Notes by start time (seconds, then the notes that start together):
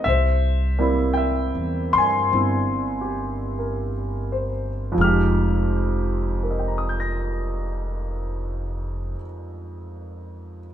0.04 C2 E5
0.08 C5
0.79 G3 A#3 C4 E4
1.14 E5 G5
1.55 E2
1.93 G2 C6
1.98 G#5
2.32 G1 C4 E4
3.01 G4
3.59 A#4
4.32 C5
4.92 F2 F3
4.98 F1 G#3 D#4 F6
5.04 G4
6.43 A#4
6.51 D#5
6.59 G5
6.68 A#5
6.78 D#6
6.89 G6
7.00 A#6